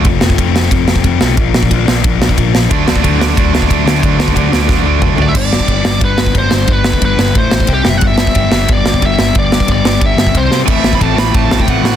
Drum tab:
CC |----------------|----------------|----------------|----------------|
RD |x---x---x---x---|x---x---x---x---|x---x---x---x---|x---x-----------|
SD |--o---o---o---o-|--o---o---o---o-|--o---o---o---o-|--o---o-o-------|
T2 |----------------|----------------|----------------|------------o---|
FT |----------------|----------------|----------------|--------------o-|
BD |o--oo---o--oo---|o--oo---o--oo---|o--oo---o--oo---|o--oo---o---o---|

CC |x---------------|----------------|----------------|----------------|
RD |----x---x---x---|x---x---x---x---|x---x---x---x---|x---x---x---x---|
SD |--o---o---o---o-|--o---o---o---o-|--o---o---o---o-|--o---o---o---o-|
T2 |----------------|----------------|----------------|----------------|
FT |----------------|----------------|----------------|----------------|
BD |o--oo---o--oo---|o--oo---o--oo---|o--oo---o--oo---|o--oo---o--oo---|

CC |x---------------|
RD |x---x---x---x---|
SD |--o---o---o---o-|
T2 |----------------|
FT |----------------|
BD |o--oo---o--oo---|